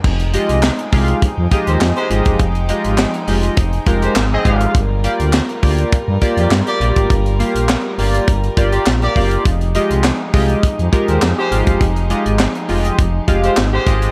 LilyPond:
<<
  \new Staff \with { instrumentName = "Horn section" } { \time 4/4 \key f \dorian \tempo 4 = 102 r2 r8. <aes g' c''>16 r16 <aes g' c''>8. | r2 r8. <aes g' c''>16 r16 <c' aes' ees''>8. | r2 r8. <bes g' d''>16 r16 <bes g' d''>8. | r2 r8. <bes g' d''>16 r16 <bes g' d''>8. |
r2 r8. <aes g' c''>16 r16 <aes g' c''>8. | r2 r8. <aes g' c''>16 r16 <aes g' c''>8. | }
  \new Staff \with { instrumentName = "Analog polysynth" } { \time 4/4 \key f \dorian r8 <aes f' g' ees''>8 r8 <aes f' g' f''>8 r8 <aes f' g' ees''>8 r8 <aes f' g' ees''>8 | r8 <aes f' g' ees''>8 r8 <aes f' g' ees''>8 r8 <aes f' g' bes'>8 r8 <aes f' g' f''>8 | r8 <bes f' g' d''>8 r8 <bes f' g' d''>8 r8 <bes f' g' d''>8 r8 <bes f' g' d''>8 | r8 <bes f' g' f''>8 r8 <bes f' g' d''>8 r8 <bes f' g' d''>8 r8 <bes f' g' d''>8 |
r8 <aes f' g' ees''>8 r8 <aes f' g' ees''>8 r8 <aes f' g' bes'>8 r8 <aes f' g' f''>8 | r8 <aes f' g' ees''>8 r8 <aes f' g' ees''>8 r8 <aes f' g' f''>8 r8 <aes f' g' ees''>8 | }
  \new Staff \with { instrumentName = "String section" } { \time 4/4 \key f \dorian <f aes ees' g''>1~ | <f aes ees' g''>1 | <g f' bes'>1~ | <g f' bes'>1 |
<f aes ees' g'>1~ | <f aes ees' g'>1 | }
  \new Staff \with { instrumentName = "FM bass" } { \clef bass \time 4/4 \key f \dorian f,,8. c,8 r16 c,8 f,16 f,16 r16 ees,16 f,16 r16 aes,,16 ges,,16 | f,,8. aes,,8 r16 f,,8 f,,8 f,,8 aes,,8 aes,,8 | g,,8. d,8 r16 d,8 g,16 g,16 r16 f,16 g,16 r16 bes,,16 aes,,16 | g,,8. bes,,8 r16 g,,8 g,,8 g,,8 bes,,8 ges,,8 |
f,,8. c,8 r16 c,8 f,16 f,16 r16 ees,16 f,16 r16 aes,,16 ges,,16 | f,,8. aes,,8 r16 f,,8 f,,8 f,,8 aes,,8 aes,,8 | }
  \new DrumStaff \with { instrumentName = "Drums" } \drummode { \time 4/4 <cymc bd>16 hh16 hh16 hh16 <hc sn>16 hh16 <hho bd>16 hh16 <hh bd>8 <hh bd>16 hh16 <hc sn>16 hh16 hh16 <hh bd>16 | <hh bd>16 hh16 hh16 hh16 <hc sn>16 hh16 hho16 hh16 <hh bd>16 hh16 <hh bd>16 hh16 <hc sn>8 <hh bd>16 hh16 | <hh bd>8 hh16 hh16 <hc sn>16 hh16 <hho bd>16 hh16 <hh bd>8 <hh bd>16 hh16 <hc sn>16 hh16 hh16 <hh bd>16 | <hh bd>16 hh16 hh16 hh16 <hc sn>8 hho16 hh16 <hh bd>16 hh16 <hh bd>16 hh16 <hc sn>16 hh16 <hho bd>16 hh16 |
<hh bd>16 hh16 hh16 hh16 <hc sn>8 <hho bd>16 hh16 <hh bd>16 hh16 <hh bd>16 hh16 <hc sn>8 hh16 <hh bd>16 | <hh bd>16 hh16 hh16 hh16 <hc sn>16 hh16 hho16 hh16 <hh bd>8 <hh bd>16 hh16 <hc sn>8 <hh bd>16 hh16 | }
>>